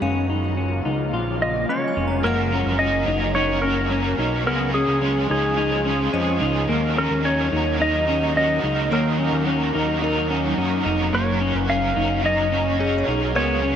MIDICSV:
0, 0, Header, 1, 7, 480
1, 0, Start_track
1, 0, Tempo, 555556
1, 20, Time_signature, 4, 2, 24, 8
1, 11887, End_track
2, 0, Start_track
2, 0, Title_t, "Synth bell"
2, 0, Program_c, 0, 98
2, 16, Note_on_c, 0, 77, 54
2, 602, Note_off_c, 0, 77, 0
2, 1469, Note_on_c, 0, 75, 65
2, 1622, Note_on_c, 0, 80, 43
2, 1793, Note_on_c, 0, 82, 47
2, 1955, Note_on_c, 0, 78, 56
2, 2048, Note_off_c, 0, 75, 0
2, 2185, Note_off_c, 0, 80, 0
2, 2330, Note_off_c, 0, 82, 0
2, 2531, Note_off_c, 0, 78, 0
2, 5302, Note_on_c, 0, 75, 52
2, 5885, Note_off_c, 0, 75, 0
2, 7706, Note_on_c, 0, 73, 51
2, 8287, Note_off_c, 0, 73, 0
2, 8672, Note_on_c, 0, 70, 59
2, 9250, Note_off_c, 0, 70, 0
2, 11062, Note_on_c, 0, 68, 72
2, 11217, Note_on_c, 0, 73, 56
2, 11538, Note_on_c, 0, 70, 64
2, 11645, Note_off_c, 0, 68, 0
2, 11782, Note_off_c, 0, 73, 0
2, 11887, Note_off_c, 0, 70, 0
2, 11887, End_track
3, 0, Start_track
3, 0, Title_t, "Electric slide guitar"
3, 0, Program_c, 1, 29
3, 1228, Note_on_c, 1, 75, 87
3, 1460, Note_off_c, 1, 75, 0
3, 1463, Note_on_c, 1, 73, 88
3, 1937, Note_on_c, 1, 70, 107
3, 1956, Note_off_c, 1, 73, 0
3, 2408, Note_on_c, 1, 75, 103
3, 2433, Note_off_c, 1, 70, 0
3, 2890, Note_off_c, 1, 75, 0
3, 2893, Note_on_c, 1, 73, 96
3, 3125, Note_on_c, 1, 70, 86
3, 3144, Note_off_c, 1, 73, 0
3, 3852, Note_off_c, 1, 70, 0
3, 3863, Note_on_c, 1, 70, 96
3, 4094, Note_off_c, 1, 70, 0
3, 4097, Note_on_c, 1, 68, 94
3, 4579, Note_off_c, 1, 68, 0
3, 4589, Note_on_c, 1, 68, 73
3, 5510, Note_off_c, 1, 68, 0
3, 6034, Note_on_c, 1, 70, 87
3, 6266, Note_on_c, 1, 73, 110
3, 6274, Note_off_c, 1, 70, 0
3, 6749, Note_off_c, 1, 73, 0
3, 6753, Note_on_c, 1, 75, 106
3, 7222, Note_off_c, 1, 75, 0
3, 7232, Note_on_c, 1, 75, 104
3, 7673, Note_off_c, 1, 75, 0
3, 7716, Note_on_c, 1, 70, 86
3, 8155, Note_off_c, 1, 70, 0
3, 9630, Note_on_c, 1, 73, 100
3, 10010, Note_off_c, 1, 73, 0
3, 10010, Note_on_c, 1, 71, 100
3, 10106, Note_on_c, 1, 77, 110
3, 10119, Note_off_c, 1, 71, 0
3, 10586, Note_off_c, 1, 77, 0
3, 10590, Note_on_c, 1, 75, 85
3, 11270, Note_off_c, 1, 75, 0
3, 11545, Note_on_c, 1, 73, 108
3, 11887, Note_off_c, 1, 73, 0
3, 11887, End_track
4, 0, Start_track
4, 0, Title_t, "Overdriven electric guitar"
4, 0, Program_c, 2, 29
4, 1932, Note_on_c, 2, 54, 64
4, 1945, Note_on_c, 2, 61, 73
4, 1956, Note_on_c, 2, 66, 70
4, 1965, Note_on_c, 2, 70, 85
4, 2158, Note_off_c, 2, 70, 0
4, 2168, Note_on_c, 2, 70, 54
4, 2176, Note_off_c, 2, 54, 0
4, 2183, Note_off_c, 2, 61, 0
4, 2186, Note_off_c, 2, 66, 0
4, 2196, Note_on_c, 2, 66, 47
4, 2216, Note_on_c, 2, 61, 42
4, 2412, Note_on_c, 2, 54, 76
4, 2414, Note_off_c, 2, 61, 0
4, 2414, Note_off_c, 2, 70, 0
4, 2424, Note_off_c, 2, 66, 0
4, 2424, Note_on_c, 2, 61, 74
4, 2434, Note_on_c, 2, 66, 87
4, 2446, Note_on_c, 2, 70, 91
4, 2636, Note_off_c, 2, 70, 0
4, 2647, Note_on_c, 2, 70, 51
4, 2656, Note_off_c, 2, 54, 0
4, 2662, Note_off_c, 2, 61, 0
4, 2663, Note_off_c, 2, 66, 0
4, 2673, Note_on_c, 2, 66, 48
4, 2693, Note_on_c, 2, 61, 45
4, 2881, Note_on_c, 2, 54, 57
4, 2891, Note_off_c, 2, 61, 0
4, 2893, Note_off_c, 2, 70, 0
4, 2902, Note_on_c, 2, 61, 63
4, 2907, Note_off_c, 2, 66, 0
4, 2916, Note_on_c, 2, 66, 67
4, 2929, Note_on_c, 2, 70, 68
4, 3119, Note_off_c, 2, 70, 0
4, 3130, Note_off_c, 2, 54, 0
4, 3130, Note_on_c, 2, 70, 58
4, 3141, Note_off_c, 2, 61, 0
4, 3148, Note_off_c, 2, 66, 0
4, 3158, Note_on_c, 2, 66, 51
4, 3178, Note_on_c, 2, 61, 45
4, 3371, Note_on_c, 2, 54, 79
4, 3373, Note_off_c, 2, 61, 0
4, 3375, Note_off_c, 2, 70, 0
4, 3384, Note_off_c, 2, 66, 0
4, 3384, Note_on_c, 2, 61, 80
4, 3394, Note_on_c, 2, 66, 90
4, 3404, Note_on_c, 2, 70, 86
4, 3600, Note_off_c, 2, 70, 0
4, 3611, Note_on_c, 2, 70, 56
4, 3616, Note_off_c, 2, 54, 0
4, 3622, Note_off_c, 2, 61, 0
4, 3627, Note_off_c, 2, 66, 0
4, 3637, Note_on_c, 2, 66, 54
4, 3656, Note_on_c, 2, 61, 49
4, 3848, Note_on_c, 2, 49, 77
4, 3856, Note_off_c, 2, 70, 0
4, 3858, Note_off_c, 2, 61, 0
4, 3862, Note_on_c, 2, 56, 80
4, 3868, Note_off_c, 2, 66, 0
4, 3868, Note_on_c, 2, 61, 77
4, 3875, Note_on_c, 2, 65, 82
4, 3881, Note_on_c, 2, 68, 74
4, 4077, Note_off_c, 2, 68, 0
4, 4088, Note_on_c, 2, 68, 46
4, 4094, Note_off_c, 2, 49, 0
4, 4101, Note_off_c, 2, 56, 0
4, 4103, Note_off_c, 2, 65, 0
4, 4104, Note_off_c, 2, 61, 0
4, 4114, Note_on_c, 2, 65, 50
4, 4135, Note_on_c, 2, 61, 37
4, 4329, Note_on_c, 2, 49, 90
4, 4334, Note_off_c, 2, 68, 0
4, 4335, Note_off_c, 2, 61, 0
4, 4337, Note_on_c, 2, 56, 84
4, 4345, Note_off_c, 2, 65, 0
4, 4345, Note_on_c, 2, 61, 73
4, 4355, Note_on_c, 2, 65, 79
4, 4361, Note_on_c, 2, 68, 90
4, 4555, Note_off_c, 2, 68, 0
4, 4565, Note_on_c, 2, 68, 61
4, 4574, Note_off_c, 2, 49, 0
4, 4579, Note_off_c, 2, 56, 0
4, 4581, Note_off_c, 2, 65, 0
4, 4583, Note_off_c, 2, 61, 0
4, 4591, Note_on_c, 2, 65, 52
4, 4612, Note_on_c, 2, 61, 46
4, 4806, Note_on_c, 2, 56, 63
4, 4813, Note_off_c, 2, 68, 0
4, 4814, Note_off_c, 2, 61, 0
4, 4824, Note_on_c, 2, 61, 58
4, 4826, Note_off_c, 2, 65, 0
4, 4839, Note_on_c, 2, 65, 60
4, 4852, Note_on_c, 2, 68, 61
4, 5034, Note_off_c, 2, 68, 0
4, 5044, Note_on_c, 2, 68, 53
4, 5053, Note_off_c, 2, 56, 0
4, 5061, Note_off_c, 2, 65, 0
4, 5062, Note_off_c, 2, 61, 0
4, 5071, Note_on_c, 2, 65, 56
4, 5092, Note_on_c, 2, 61, 46
4, 5283, Note_on_c, 2, 49, 94
4, 5289, Note_off_c, 2, 61, 0
4, 5292, Note_off_c, 2, 68, 0
4, 5292, Note_on_c, 2, 56, 99
4, 5298, Note_off_c, 2, 65, 0
4, 5300, Note_on_c, 2, 61, 97
4, 5309, Note_on_c, 2, 65, 106
4, 5316, Note_on_c, 2, 68, 100
4, 5510, Note_off_c, 2, 68, 0
4, 5521, Note_on_c, 2, 68, 67
4, 5532, Note_off_c, 2, 49, 0
4, 5536, Note_off_c, 2, 56, 0
4, 5539, Note_off_c, 2, 65, 0
4, 5540, Note_off_c, 2, 61, 0
4, 5549, Note_on_c, 2, 65, 59
4, 5569, Note_on_c, 2, 61, 48
4, 5764, Note_on_c, 2, 51, 76
4, 5770, Note_off_c, 2, 68, 0
4, 5777, Note_on_c, 2, 54, 82
4, 5782, Note_off_c, 2, 61, 0
4, 5785, Note_off_c, 2, 65, 0
4, 5786, Note_on_c, 2, 63, 91
4, 5791, Note_on_c, 2, 66, 83
4, 5799, Note_on_c, 2, 70, 96
4, 5990, Note_off_c, 2, 70, 0
4, 6000, Note_on_c, 2, 70, 51
4, 6012, Note_off_c, 2, 51, 0
4, 6015, Note_off_c, 2, 66, 0
4, 6019, Note_off_c, 2, 54, 0
4, 6023, Note_off_c, 2, 63, 0
4, 6026, Note_on_c, 2, 66, 51
4, 6045, Note_on_c, 2, 63, 41
4, 6243, Note_on_c, 2, 51, 77
4, 6250, Note_off_c, 2, 70, 0
4, 6253, Note_off_c, 2, 63, 0
4, 6255, Note_on_c, 2, 54, 92
4, 6259, Note_off_c, 2, 66, 0
4, 6263, Note_on_c, 2, 63, 87
4, 6269, Note_on_c, 2, 66, 93
4, 6277, Note_on_c, 2, 70, 90
4, 6469, Note_off_c, 2, 70, 0
4, 6479, Note_on_c, 2, 70, 56
4, 6492, Note_off_c, 2, 51, 0
4, 6495, Note_off_c, 2, 66, 0
4, 6498, Note_off_c, 2, 54, 0
4, 6502, Note_off_c, 2, 63, 0
4, 6506, Note_on_c, 2, 66, 52
4, 6525, Note_on_c, 2, 63, 50
4, 6723, Note_on_c, 2, 54, 61
4, 6730, Note_off_c, 2, 70, 0
4, 6732, Note_off_c, 2, 63, 0
4, 6742, Note_on_c, 2, 63, 65
4, 6743, Note_off_c, 2, 66, 0
4, 6756, Note_on_c, 2, 66, 68
4, 6770, Note_on_c, 2, 70, 69
4, 6952, Note_off_c, 2, 70, 0
4, 6962, Note_on_c, 2, 70, 59
4, 6972, Note_off_c, 2, 54, 0
4, 6978, Note_off_c, 2, 66, 0
4, 6981, Note_off_c, 2, 63, 0
4, 6989, Note_on_c, 2, 66, 56
4, 7010, Note_on_c, 2, 63, 46
4, 7208, Note_on_c, 2, 51, 75
4, 7211, Note_off_c, 2, 70, 0
4, 7215, Note_off_c, 2, 63, 0
4, 7217, Note_on_c, 2, 54, 92
4, 7225, Note_off_c, 2, 66, 0
4, 7226, Note_on_c, 2, 63, 82
4, 7234, Note_on_c, 2, 66, 96
4, 7241, Note_on_c, 2, 70, 91
4, 7435, Note_off_c, 2, 70, 0
4, 7445, Note_on_c, 2, 70, 54
4, 7454, Note_off_c, 2, 51, 0
4, 7459, Note_off_c, 2, 54, 0
4, 7460, Note_off_c, 2, 66, 0
4, 7463, Note_off_c, 2, 63, 0
4, 7470, Note_on_c, 2, 66, 57
4, 7494, Note_on_c, 2, 63, 48
4, 7686, Note_on_c, 2, 51, 74
4, 7693, Note_off_c, 2, 70, 0
4, 7696, Note_off_c, 2, 63, 0
4, 7696, Note_on_c, 2, 54, 72
4, 7702, Note_off_c, 2, 66, 0
4, 7706, Note_on_c, 2, 63, 76
4, 7713, Note_on_c, 2, 66, 73
4, 7719, Note_on_c, 2, 70, 82
4, 7914, Note_off_c, 2, 70, 0
4, 7924, Note_on_c, 2, 70, 53
4, 7933, Note_off_c, 2, 51, 0
4, 7938, Note_off_c, 2, 54, 0
4, 7941, Note_off_c, 2, 66, 0
4, 7943, Note_off_c, 2, 63, 0
4, 7951, Note_on_c, 2, 66, 46
4, 7972, Note_on_c, 2, 63, 41
4, 8169, Note_on_c, 2, 51, 84
4, 8172, Note_off_c, 2, 70, 0
4, 8178, Note_off_c, 2, 63, 0
4, 8181, Note_on_c, 2, 54, 83
4, 8186, Note_off_c, 2, 66, 0
4, 8188, Note_on_c, 2, 63, 89
4, 8197, Note_on_c, 2, 66, 87
4, 8203, Note_on_c, 2, 70, 89
4, 8394, Note_off_c, 2, 70, 0
4, 8405, Note_on_c, 2, 70, 68
4, 8415, Note_off_c, 2, 51, 0
4, 8421, Note_off_c, 2, 54, 0
4, 8421, Note_off_c, 2, 66, 0
4, 8424, Note_off_c, 2, 63, 0
4, 8432, Note_on_c, 2, 66, 49
4, 8453, Note_on_c, 2, 63, 47
4, 8645, Note_on_c, 2, 54, 68
4, 8652, Note_off_c, 2, 63, 0
4, 8652, Note_off_c, 2, 70, 0
4, 8662, Note_on_c, 2, 63, 66
4, 8666, Note_off_c, 2, 66, 0
4, 8677, Note_on_c, 2, 66, 68
4, 8691, Note_on_c, 2, 70, 75
4, 8875, Note_off_c, 2, 70, 0
4, 8886, Note_on_c, 2, 70, 60
4, 8893, Note_off_c, 2, 54, 0
4, 8900, Note_off_c, 2, 66, 0
4, 8901, Note_off_c, 2, 63, 0
4, 8911, Note_on_c, 2, 66, 59
4, 8933, Note_on_c, 2, 63, 48
4, 9124, Note_on_c, 2, 51, 95
4, 9132, Note_off_c, 2, 63, 0
4, 9133, Note_off_c, 2, 70, 0
4, 9134, Note_on_c, 2, 54, 93
4, 9140, Note_off_c, 2, 66, 0
4, 9143, Note_on_c, 2, 63, 95
4, 9150, Note_on_c, 2, 66, 96
4, 9155, Note_on_c, 2, 70, 105
4, 9358, Note_off_c, 2, 70, 0
4, 9369, Note_on_c, 2, 70, 68
4, 9372, Note_off_c, 2, 51, 0
4, 9377, Note_off_c, 2, 54, 0
4, 9381, Note_off_c, 2, 63, 0
4, 9382, Note_off_c, 2, 66, 0
4, 9392, Note_on_c, 2, 66, 63
4, 9413, Note_on_c, 2, 63, 49
4, 9603, Note_on_c, 2, 54, 66
4, 9614, Note_off_c, 2, 70, 0
4, 9615, Note_off_c, 2, 63, 0
4, 9617, Note_off_c, 2, 66, 0
4, 9619, Note_on_c, 2, 61, 69
4, 9628, Note_on_c, 2, 66, 74
4, 9637, Note_on_c, 2, 70, 74
4, 9837, Note_off_c, 2, 70, 0
4, 9847, Note_on_c, 2, 70, 59
4, 9852, Note_off_c, 2, 54, 0
4, 9860, Note_off_c, 2, 61, 0
4, 9860, Note_off_c, 2, 66, 0
4, 9870, Note_on_c, 2, 66, 50
4, 9892, Note_on_c, 2, 61, 41
4, 10089, Note_on_c, 2, 54, 76
4, 10090, Note_off_c, 2, 61, 0
4, 10094, Note_off_c, 2, 70, 0
4, 10100, Note_off_c, 2, 66, 0
4, 10101, Note_on_c, 2, 61, 88
4, 10110, Note_on_c, 2, 66, 81
4, 10121, Note_on_c, 2, 70, 92
4, 10312, Note_off_c, 2, 70, 0
4, 10322, Note_on_c, 2, 70, 51
4, 10334, Note_off_c, 2, 54, 0
4, 10337, Note_off_c, 2, 66, 0
4, 10341, Note_off_c, 2, 61, 0
4, 10348, Note_on_c, 2, 66, 45
4, 10367, Note_on_c, 2, 61, 50
4, 10564, Note_on_c, 2, 54, 59
4, 10571, Note_off_c, 2, 70, 0
4, 10573, Note_off_c, 2, 61, 0
4, 10583, Note_on_c, 2, 61, 65
4, 10584, Note_off_c, 2, 66, 0
4, 10596, Note_on_c, 2, 66, 62
4, 10612, Note_on_c, 2, 70, 69
4, 10791, Note_off_c, 2, 70, 0
4, 10801, Note_on_c, 2, 70, 55
4, 10812, Note_off_c, 2, 54, 0
4, 10821, Note_off_c, 2, 66, 0
4, 10822, Note_off_c, 2, 61, 0
4, 10831, Note_on_c, 2, 66, 54
4, 10850, Note_on_c, 2, 61, 47
4, 11049, Note_on_c, 2, 54, 76
4, 11050, Note_off_c, 2, 61, 0
4, 11051, Note_off_c, 2, 70, 0
4, 11060, Note_off_c, 2, 66, 0
4, 11061, Note_on_c, 2, 61, 90
4, 11070, Note_on_c, 2, 66, 82
4, 11082, Note_on_c, 2, 70, 94
4, 11272, Note_off_c, 2, 70, 0
4, 11282, Note_on_c, 2, 70, 63
4, 11294, Note_off_c, 2, 54, 0
4, 11298, Note_off_c, 2, 66, 0
4, 11300, Note_off_c, 2, 61, 0
4, 11309, Note_on_c, 2, 66, 61
4, 11329, Note_on_c, 2, 61, 51
4, 11528, Note_on_c, 2, 49, 72
4, 11531, Note_off_c, 2, 70, 0
4, 11536, Note_off_c, 2, 61, 0
4, 11540, Note_on_c, 2, 56, 71
4, 11544, Note_off_c, 2, 66, 0
4, 11546, Note_on_c, 2, 61, 77
4, 11552, Note_on_c, 2, 65, 75
4, 11561, Note_on_c, 2, 68, 77
4, 11755, Note_off_c, 2, 68, 0
4, 11765, Note_on_c, 2, 68, 54
4, 11774, Note_off_c, 2, 49, 0
4, 11779, Note_off_c, 2, 65, 0
4, 11780, Note_off_c, 2, 56, 0
4, 11783, Note_off_c, 2, 61, 0
4, 11790, Note_on_c, 2, 65, 44
4, 11811, Note_on_c, 2, 61, 42
4, 11887, Note_off_c, 2, 61, 0
4, 11887, Note_off_c, 2, 65, 0
4, 11887, Note_off_c, 2, 68, 0
4, 11887, End_track
5, 0, Start_track
5, 0, Title_t, "Clean electric guitar"
5, 0, Program_c, 3, 27
5, 16, Note_on_c, 3, 61, 92
5, 253, Note_off_c, 3, 61, 0
5, 256, Note_on_c, 3, 63, 70
5, 492, Note_off_c, 3, 63, 0
5, 495, Note_on_c, 3, 61, 66
5, 733, Note_off_c, 3, 61, 0
5, 737, Note_on_c, 3, 63, 81
5, 978, Note_off_c, 3, 63, 0
5, 980, Note_on_c, 3, 65, 78
5, 1209, Note_off_c, 3, 65, 0
5, 1220, Note_on_c, 3, 65, 66
5, 1460, Note_off_c, 3, 65, 0
5, 1460, Note_on_c, 3, 61, 69
5, 1690, Note_off_c, 3, 61, 0
5, 1700, Note_on_c, 3, 61, 70
5, 1937, Note_on_c, 3, 58, 107
5, 1940, Note_off_c, 3, 61, 0
5, 2178, Note_off_c, 3, 58, 0
5, 2178, Note_on_c, 3, 61, 78
5, 2404, Note_off_c, 3, 61, 0
5, 2415, Note_on_c, 3, 61, 84
5, 2654, Note_off_c, 3, 61, 0
5, 2658, Note_on_c, 3, 63, 78
5, 2889, Note_off_c, 3, 63, 0
5, 2900, Note_on_c, 3, 63, 101
5, 3133, Note_off_c, 3, 63, 0
5, 3137, Note_on_c, 3, 61, 77
5, 3369, Note_off_c, 3, 61, 0
5, 3379, Note_on_c, 3, 61, 72
5, 3618, Note_off_c, 3, 61, 0
5, 3622, Note_on_c, 3, 63, 80
5, 3855, Note_off_c, 3, 63, 0
5, 3858, Note_on_c, 3, 59, 97
5, 4095, Note_off_c, 3, 59, 0
5, 4099, Note_on_c, 3, 61, 86
5, 4326, Note_off_c, 3, 61, 0
5, 4336, Note_on_c, 3, 61, 81
5, 4574, Note_off_c, 3, 61, 0
5, 4578, Note_on_c, 3, 63, 85
5, 4805, Note_off_c, 3, 63, 0
5, 4815, Note_on_c, 3, 63, 92
5, 5052, Note_off_c, 3, 63, 0
5, 5056, Note_on_c, 3, 61, 79
5, 5287, Note_off_c, 3, 61, 0
5, 5298, Note_on_c, 3, 61, 83
5, 5532, Note_off_c, 3, 61, 0
5, 5536, Note_on_c, 3, 63, 80
5, 5778, Note_off_c, 3, 63, 0
5, 5778, Note_on_c, 3, 58, 112
5, 6019, Note_off_c, 3, 58, 0
5, 6020, Note_on_c, 3, 61, 81
5, 6252, Note_off_c, 3, 61, 0
5, 6262, Note_on_c, 3, 61, 86
5, 6496, Note_off_c, 3, 61, 0
5, 6499, Note_on_c, 3, 63, 78
5, 6730, Note_off_c, 3, 63, 0
5, 6741, Note_on_c, 3, 63, 96
5, 6977, Note_off_c, 3, 63, 0
5, 6980, Note_on_c, 3, 61, 74
5, 7212, Note_off_c, 3, 61, 0
5, 7222, Note_on_c, 3, 61, 86
5, 7459, Note_off_c, 3, 61, 0
5, 7463, Note_on_c, 3, 63, 74
5, 7702, Note_off_c, 3, 63, 0
5, 7702, Note_on_c, 3, 58, 105
5, 7941, Note_off_c, 3, 58, 0
5, 7941, Note_on_c, 3, 61, 83
5, 8169, Note_off_c, 3, 61, 0
5, 8180, Note_on_c, 3, 61, 76
5, 8413, Note_off_c, 3, 61, 0
5, 8416, Note_on_c, 3, 63, 90
5, 8647, Note_off_c, 3, 63, 0
5, 8657, Note_on_c, 3, 63, 91
5, 8898, Note_off_c, 3, 63, 0
5, 8902, Note_on_c, 3, 61, 80
5, 9129, Note_off_c, 3, 61, 0
5, 9139, Note_on_c, 3, 61, 72
5, 9371, Note_off_c, 3, 61, 0
5, 9375, Note_on_c, 3, 63, 76
5, 9616, Note_on_c, 3, 58, 105
5, 9618, Note_off_c, 3, 63, 0
5, 9856, Note_on_c, 3, 61, 87
5, 9858, Note_off_c, 3, 58, 0
5, 10088, Note_off_c, 3, 61, 0
5, 10098, Note_on_c, 3, 61, 85
5, 10334, Note_off_c, 3, 61, 0
5, 10337, Note_on_c, 3, 63, 90
5, 10567, Note_off_c, 3, 63, 0
5, 10577, Note_on_c, 3, 63, 87
5, 10814, Note_off_c, 3, 63, 0
5, 10817, Note_on_c, 3, 61, 76
5, 11044, Note_off_c, 3, 61, 0
5, 11054, Note_on_c, 3, 61, 91
5, 11294, Note_off_c, 3, 61, 0
5, 11298, Note_on_c, 3, 63, 82
5, 11533, Note_off_c, 3, 63, 0
5, 11536, Note_on_c, 3, 59, 111
5, 11774, Note_off_c, 3, 59, 0
5, 11778, Note_on_c, 3, 61, 88
5, 11887, Note_off_c, 3, 61, 0
5, 11887, End_track
6, 0, Start_track
6, 0, Title_t, "Ambient pad"
6, 0, Program_c, 4, 92
6, 22, Note_on_c, 4, 49, 65
6, 22, Note_on_c, 4, 53, 61
6, 23, Note_on_c, 4, 58, 74
6, 24, Note_on_c, 4, 54, 60
6, 25, Note_on_c, 4, 65, 88
6, 973, Note_off_c, 4, 54, 0
6, 976, Note_on_c, 4, 56, 66
6, 1922, Note_off_c, 4, 49, 0
6, 1922, Note_off_c, 4, 53, 0
6, 1923, Note_off_c, 4, 58, 0
6, 1924, Note_off_c, 4, 65, 0
6, 1928, Note_off_c, 4, 56, 0
6, 1939, Note_on_c, 4, 61, 83
6, 1940, Note_on_c, 4, 58, 66
6, 1941, Note_on_c, 4, 54, 72
6, 3841, Note_off_c, 4, 58, 0
6, 3842, Note_off_c, 4, 54, 0
6, 3862, Note_on_c, 4, 53, 82
6, 3864, Note_on_c, 4, 56, 77
6, 5745, Note_off_c, 4, 61, 0
6, 5762, Note_off_c, 4, 53, 0
6, 5763, Note_off_c, 4, 56, 0
6, 5779, Note_on_c, 4, 63, 91
6, 5783, Note_on_c, 4, 54, 82
6, 5783, Note_on_c, 4, 58, 75
6, 9585, Note_off_c, 4, 63, 0
6, 9627, Note_on_c, 4, 61, 84
6, 11507, Note_off_c, 4, 54, 0
6, 11507, Note_off_c, 4, 58, 0
6, 11541, Note_on_c, 4, 56, 70
6, 11544, Note_on_c, 4, 53, 89
6, 11887, Note_off_c, 4, 53, 0
6, 11887, Note_off_c, 4, 56, 0
6, 11887, Note_off_c, 4, 61, 0
6, 11887, End_track
7, 0, Start_track
7, 0, Title_t, "Analog synth bass"
7, 0, Program_c, 5, 38
7, 16, Note_on_c, 5, 30, 102
7, 704, Note_off_c, 5, 30, 0
7, 741, Note_on_c, 5, 37, 87
7, 969, Note_off_c, 5, 37, 0
7, 978, Note_on_c, 5, 34, 85
7, 1435, Note_off_c, 5, 34, 0
7, 1702, Note_on_c, 5, 29, 95
7, 1929, Note_off_c, 5, 29, 0
7, 1940, Note_on_c, 5, 30, 104
7, 2282, Note_off_c, 5, 30, 0
7, 2298, Note_on_c, 5, 30, 103
7, 2641, Note_off_c, 5, 30, 0
7, 2656, Note_on_c, 5, 30, 107
7, 3584, Note_off_c, 5, 30, 0
7, 3616, Note_on_c, 5, 35, 96
7, 3856, Note_on_c, 5, 37, 99
7, 3869, Note_off_c, 5, 35, 0
7, 4200, Note_off_c, 5, 37, 0
7, 4218, Note_on_c, 5, 37, 89
7, 4561, Note_off_c, 5, 37, 0
7, 4579, Note_on_c, 5, 37, 101
7, 5265, Note_off_c, 5, 37, 0
7, 5303, Note_on_c, 5, 41, 111
7, 5530, Note_off_c, 5, 41, 0
7, 5540, Note_on_c, 5, 37, 100
7, 5768, Note_off_c, 5, 37, 0
7, 5782, Note_on_c, 5, 39, 98
7, 6123, Note_off_c, 5, 39, 0
7, 6142, Note_on_c, 5, 39, 95
7, 6483, Note_off_c, 5, 39, 0
7, 6506, Note_on_c, 5, 39, 104
7, 7428, Note_off_c, 5, 39, 0
7, 7462, Note_on_c, 5, 37, 97
7, 7689, Note_off_c, 5, 37, 0
7, 7703, Note_on_c, 5, 39, 105
7, 8044, Note_off_c, 5, 39, 0
7, 8060, Note_on_c, 5, 39, 106
7, 8402, Note_off_c, 5, 39, 0
7, 8426, Note_on_c, 5, 39, 98
7, 9109, Note_off_c, 5, 39, 0
7, 9141, Note_on_c, 5, 42, 95
7, 9368, Note_off_c, 5, 42, 0
7, 9383, Note_on_c, 5, 29, 89
7, 9610, Note_off_c, 5, 29, 0
7, 9622, Note_on_c, 5, 30, 106
7, 9963, Note_off_c, 5, 30, 0
7, 9982, Note_on_c, 5, 30, 100
7, 10323, Note_off_c, 5, 30, 0
7, 10344, Note_on_c, 5, 30, 100
7, 11268, Note_off_c, 5, 30, 0
7, 11300, Note_on_c, 5, 35, 97
7, 11544, Note_on_c, 5, 37, 102
7, 11557, Note_off_c, 5, 35, 0
7, 11884, Note_off_c, 5, 37, 0
7, 11887, End_track
0, 0, End_of_file